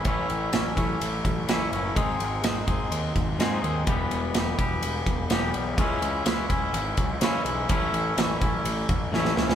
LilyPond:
<<
  \new Staff \with { instrumentName = "Clean electric guitar" } { \time 4/4 \key a \lydian \tempo 4 = 126 <a, e a cis' e'>4 <e a cis' e'>8 <a cis' e'>4. <a, e a cis' e'>8 <a cis' e'>8 | <gis, dis gis bis dis' gis'>4 <gis bis dis' gis'>8 <gis bis dis' gis'>4. <gis, dis gis bis dis' gis'>8 <gis bis dis' gis'>8 | <e, b, e g b g'>4 <e g b g'>8 <e g b g'>4. <e, b, e g b g'>8 <e g b g'>8 | <cis e gis cis' e'>4 <e gis cis' e'>8 <gis cis' e'>4. <cis e gis cis' e'>8 <gis cis' e'>8 |
<a, e a cis' e'>4 <e a cis' e'>8 <a cis' e'>4. <a, e a cis' e'>8 <a cis' e'>8 | }
  \new Staff \with { instrumentName = "Picked electric bass" } { \clef bass \time 4/4 \key a \lydian a,,8 a,,8 a,,8 a,,8 a,,8 a,,8 a,,8 fis,,8 | gis,,8 gis,,8 gis,,8 gis,,8 dis,8 gis,,8 gis,8 dis,8 | e,,8 e,,8 e,,8 e,,8 e,,8 e,,8 e,,8 b,,8 | cis,8 cis,8 cis,8 cis,8 gis,,8 cis,8 cis8 b,,8 |
a,,8 a,,8 a,,8 a,,8 a,,8 a,,8 a,,8 cis,8 | }
  \new DrumStaff \with { instrumentName = "Drums" } \drummode { \time 4/4 <bd cymr>8 cymr8 <cymr sn>8 <bd cymr>8 cymr8 <bd cymr>8 <cymr sn>8 cymr8 | <bd cymr>8 cymr8 <cymr sn>8 <bd cymr>8 cymr8 <bd cymr>8 <cymr sn>8 cymr8 | <bd cymr>8 cymr8 <cymr sn>8 <bd cymr>8 cymr8 <bd cymr>8 <cymr sn>8 cymr8 | <bd cymr>8 cymr8 <cymr sn>8 <bd cymr>8 cymr8 <bd cymr>8 <cymr sn>8 cymr8 |
<bd cymr>8 cymr8 <cymr sn>8 <bd cymr>8 cymr8 <bd cymr>8 sn16 sn16 sn16 sn16 | }
>>